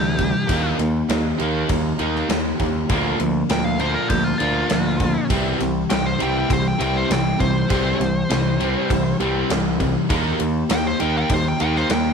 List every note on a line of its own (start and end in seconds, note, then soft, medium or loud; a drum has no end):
0.00 0.32 D2 medium
0.00 0.16 C3 medium
0.00 0.16 E3 medium
0.00 0.18 G3 medium
0.00 0.19 C4 medium
0.00 0.18 E4 medium
0.00 0.17 G4 medium
0.00 0.76 G4 medium
0.18 0.46 C3 medium
0.18 0.46 E3 medium
0.18 0.46 G3 medium
0.18 0.47 C4 soft
0.18 0.48 E4 soft
0.18 0.47 G4 medium
0.18 kick medium
0.18 ride medium
0.47 0.71 D#2 medium
0.47 0.78 D#3 medium
0.47 0.78 G3 medium
0.47 0.78 A#3 medium
0.47 0.78 D#4 medium
0.47 0.76 G4 loud
0.47 kick loud
0.47 ride medium
0.51 0.78 A#3 medium
0.51 0.78 D#4 medium
0.78 1.01 D#2 medium
0.78 1.07 D#3 medium
0.78 1.09 A#3 soft
0.78 1.07 A#3 medium
0.78 1.09 D#4 medium
0.78 1.08 G4 medium
0.78 snare soft
0.78 ride medium
1.08 1.31 D#2 medium
1.08 1.37 D#3 medium
1.08 1.39 G3 medium
1.08 1.40 A#3 medium
1.08 1.37 A#3 medium
1.08 1.38 D#4 medium
1.08 1.36 G4 medium
1.08 snare loud
1.08 ride medium
1.37 1.62 D#2 medium
1.37 1.68 D#3 medium
1.37 1.69 A#3 soft
1.37 1.68 A#3 loud
1.37 1.70 D#4 medium
1.37 1.69 D#4 loud
1.37 1.68 G4 medium
1.37 ride medium
1.68 1.92 D#2 medium
1.68 1.99 D#3 medium
1.68 1.97 D#3 medium
1.68 2.00 G3 medium
1.68 2.00 A#3 medium
1.68 1.97 A#3 medium
1.68 2.00 D#4 loud
1.68 1.98 G4 medium
1.68 kick loud
1.68 ride medium
1.99 2.22 D#2 medium
1.99 2.28 D#3 medium
1.99 2.28 A#3 loud
1.99 2.29 A#3 soft
1.99 2.28 D#4 loud
1.99 2.30 D#4 soft
1.99 2.29 G4 medium
1.99 ride medium
2.16 snare soft
2.29 2.52 D#2 medium
2.29 2.57 D#3 medium
2.29 2.59 G3 medium
2.29 2.57 A#3 medium
2.29 2.60 A#3 medium
2.29 2.60 D#4 medium
2.29 2.58 G4 medium
2.29 snare loud
2.29 ride loud
2.59 2.82 D#2 medium
2.59 2.87 D#3 medium
2.59 2.87 A#3 medium
2.59 2.89 A#3 soft
2.59 2.90 D#4 medium
2.59 2.89 G4 medium
2.59 kick medium
2.59 ride medium
2.89 3.12 D2 medium
2.89 3.18 A#2 medium
2.89 3.20 D3 medium
2.89 3.18 D3 medium
2.89 3.20 F3 medium
2.89 3.18 A#3 medium
2.89 3.20 A#3 medium
2.89 3.18 D4 medium
2.89 3.19 D4 medium
2.89 3.17 A#4 medium
2.89 kick loud
2.89 ride medium
3.18 3.42 D2 loud
3.18 3.47 A#2 medium
3.18 3.47 D3 medium
3.18 3.47 F3 medium
3.18 3.47 A#3 medium
3.18 3.49 A#3 soft
3.18 3.50 D4 medium
3.18 3.49 A#4 medium
3.18 ride medium
3.49 3.95 D2 medium
3.49 3.77 A#2 medium
3.49 3.77 D3 medium
3.49 3.79 F3 medium
3.49 3.77 A#3 medium
3.49 3.80 A#3 medium
3.49 3.80 D4 medium
3.49 3.77 A#4 medium
3.49 3.64 G5 medium
3.49 snare loud
3.49 ride medium
3.64 3.79 F5 medium
3.79 4.08 A#2 medium
3.79 4.08 D3 medium
3.79 4.08 F3 medium
3.79 4.08 A#3 loud
3.79 4.09 A#3 soft
3.79 4.09 D4 loud
3.79 4.10 D4 soft
3.79 4.09 A#4 soft
3.79 3.95 C5 medium
3.79 ride medium
3.95 4.09 A#4 medium
4.08 4.33 D2 medium
4.08 4.37 A#2 medium
4.08 4.39 D3 medium
4.08 4.37 D3 medium
4.08 4.40 F3 medium
4.08 4.37 A#3 medium
4.08 4.40 A#3 medium
4.08 4.39 D4 medium
4.08 4.24 G4 medium
4.08 4.37 A#4 medium
4.08 kick loud
4.08 ride medium
4.24 4.37 F4 medium
4.38 4.63 D2 medium
4.38 4.68 A#2 medium
4.38 4.69 D3 medium
4.38 4.69 F3 medium
4.38 4.69 A#3 loud
4.38 4.70 D4 soft
4.38 4.69 D4 medium
4.38 5.26 F4 medium
4.38 4.69 A#4 medium
4.38 ride medium
4.42 4.69 A#3 soft
4.69 5.15 D2 medium
4.69 4.97 A#2 medium
4.69 4.97 D3 medium
4.69 5.00 F3 medium
4.69 5.00 A#3 medium
4.69 4.97 A#3 medium
4.69 4.98 D4 medium
4.69 4.96 A#4 medium
4.69 snare loud
4.69 ride loud
4.98 5.27 A#2 medium
4.98 5.28 D3 medium
4.98 5.27 F3 medium
4.98 5.29 A#3 soft
4.98 5.29 D4 soft
4.98 5.29 A#4 soft
4.98 kick medium
4.98 ride medium
5.02 5.28 A#3 medium
5.28 5.52 C2 medium
5.28 5.59 C3 medium
5.28 5.59 E3 loud
5.28 5.59 G3 medium
5.28 5.60 C4 medium
5.28 5.59 E4 medium
5.28 5.57 G4 loud
5.28 kick loud
5.28 ride loud
5.58 5.83 C2 medium
5.58 5.88 C3 medium
5.58 5.88 E3 medium
5.58 5.87 G3 medium
5.58 5.90 C4 medium
5.58 5.90 E4 soft
5.58 5.89 G4 medium
5.58 snare soft
5.58 ride medium
5.89 6.13 C2 medium
5.89 6.17 C3 medium
5.89 6.17 E3 medium
5.89 6.20 G3 medium
5.89 6.05 G5 loud
5.89 snare loud
5.89 ride medium
6.06 6.20 C5 medium
6.18 6.43 C2 medium
6.18 6.48 C3 medium
6.18 6.49 E3 medium
6.18 6.49 G3 medium
6.18 6.48 C4 soft
6.18 6.49 E4 soft
6.18 6.49 G4 medium
6.18 ride medium
6.22 6.36 G5 medium
6.39 6.52 G5 medium
6.49 6.73 C2 medium
6.49 6.80 C3 medium
6.49 6.77 C3 medium
6.49 6.77 E3 medium
6.49 6.80 G3 medium
6.49 6.80 C4 medium
6.49 6.79 E4 medium
6.49 6.77 G4 medium
6.49 kick loud
6.49 ride medium
6.53 6.66 C5 medium
6.68 6.81 G5 medium
6.78 7.02 C2 medium
6.78 7.08 C3 medium
6.78 7.08 E3 loud
6.78 7.08 G3 loud
6.78 7.09 C4 soft
6.78 7.10 E4 soft
6.78 7.09 G4 medium
6.78 ride medium
6.82 6.96 G5 medium
6.97 7.11 C5 loud
7.09 7.32 C2 medium
7.09 7.37 C3 medium
7.09 7.37 E3 medium
7.09 7.40 G3 medium
7.09 7.40 C4 medium
7.09 7.40 E4 medium
7.09 7.38 G4 medium
7.09 7.40 G5 medium
7.09 snare loud
7.09 ride loud
7.39 7.63 C2 medium
7.39 7.67 C3 medium
7.39 7.67 E3 medium
7.39 7.67 G3 medium
7.39 7.68 C4 medium
7.39 7.69 E4 soft
7.39 7.69 G4 medium
7.39 9.16 C5 medium
7.39 kick medium
7.39 ride medium
7.68 7.93 C2 medium
7.68 7.99 C3 medium
7.68 7.98 C3 medium
7.68 7.98 E3 medium
7.68 8.00 G3 medium
7.68 7.98 G3 medium
7.68 8.00 C4 medium
7.68 8.00 E4 medium
7.68 7.98 G4 medium
7.68 kick loud
7.68 ride medium
7.99 8.22 C2 medium
7.99 8.27 C3 medium
7.99 8.27 E3 medium
7.99 8.27 G3 medium
7.99 8.30 C4 soft
7.99 8.31 E4 soft
7.99 8.30 G4 medium
7.99 snare soft
7.99 ride medium
8.29 8.75 C2 medium
8.29 8.57 C3 medium
8.29 8.57 E3 medium
8.29 8.57 G3 medium
8.29 8.61 C4 medium
8.29 8.59 E4 medium
8.29 snare loud
8.29 ride medium
8.34 8.57 G4 medium
8.59 8.88 C3 medium
8.59 8.88 E3 medium
8.59 8.88 G3 loud
8.59 8.88 C4 soft
8.59 8.88 E4 medium
8.59 8.89 G4 medium
8.59 ride medium
8.88 9.12 C2 medium
8.88 9.19 C3 medium
8.88 9.17 C3 medium
8.88 9.17 E3 medium
8.88 9.19 G3 loud
8.88 9.20 C4 medium
8.88 9.19 E4 medium
8.88 9.16 G4 loud
8.88 kick loud
8.88 ride medium
9.17 9.42 C2 loud
9.17 9.48 C3 loud
9.17 9.48 E3 medium
9.17 9.49 G3 loud
9.17 9.50 E4 medium
9.17 9.49 G4 medium
9.17 ride medium
9.21 9.48 C4 medium
9.48 9.95 C2 medium
9.48 9.77 C3 medium
9.48 9.77 E3 medium
9.48 9.79 G3 medium
9.48 9.80 C4 medium
9.48 9.79 E4 medium
9.48 9.77 G4 medium
9.48 snare loud
9.48 ride loud
9.78 10.07 C3 medium
9.78 10.07 E3 medium
9.78 10.07 G3 medium
9.78 10.10 C4 medium
9.78 10.09 E4 medium
9.78 10.09 G4 medium
9.78 kick medium
9.78 ride medium
10.08 10.32 D#2 medium
10.08 10.39 D#3 medium
10.08 10.38 D#3 medium
10.08 10.40 G3 medium
10.08 10.40 A#3 loud
10.08 10.38 A#3 medium
10.08 10.39 D#4 medium
10.08 10.38 D#4 loud
10.08 10.37 G4 loud
10.08 kick loud
10.08 ride medium
10.38 10.63 D#2 medium
10.38 10.67 D#3 medium
10.38 10.67 A#3 medium
10.38 10.68 A#3 medium
10.38 10.69 D#4 medium
10.38 10.69 G4 medium
10.38 ride medium
10.68 10.92 D#2 loud
10.68 10.97 D#3 medium
10.68 10.99 G3 medium
10.68 10.99 A#3 medium
10.68 10.97 A#3 medium
10.68 10.99 D#4 medium
10.68 10.97 G4 medium
10.68 snare loud
10.68 ride loud
10.72 10.86 G5 loud
10.87 11.00 C5 medium
10.99 11.23 D#2 medium
10.99 11.28 D#3 medium
10.99 11.28 A#3 loud
10.99 11.29 A#3 soft
10.99 11.30 D#4 medium
10.99 11.29 D#4 medium
10.99 11.29 G4 soft
10.99 11.14 G5 loud
10.99 ride medium
11.18 11.31 G5 loud
11.29 11.52 D#2 medium
11.29 11.59 D#3 medium
11.29 11.57 D#3 medium
11.29 11.60 G3 medium
11.29 11.60 A#3 medium
11.29 11.57 A#3 medium
11.29 11.59 D#4 medium
11.29 11.57 G4 medium
11.29 kick loud
11.29 ride loud
11.34 11.46 C5 medium
11.48 11.60 G5 loud
11.59 11.83 D#2 medium
11.59 11.88 D#3 medium
11.59 11.88 A#3 loud
11.59 11.89 A#3 medium
11.59 11.90 D#4 medium
11.59 11.89 D#4 loud
11.59 11.89 G4 medium
11.59 11.75 G5 loud
11.59 ride medium
11.76 11.90 C5 loud
11.76 snare soft
11.90 12.12 D#2 medium
11.90 12.13 D#3 medium
11.90 12.13 G3 medium
11.90 12.13 A#3 medium
11.90 12.13 D#4 medium
11.90 12.13 G4 medium
11.90 12.13 G5 loud
11.90 snare loud
11.90 ride loud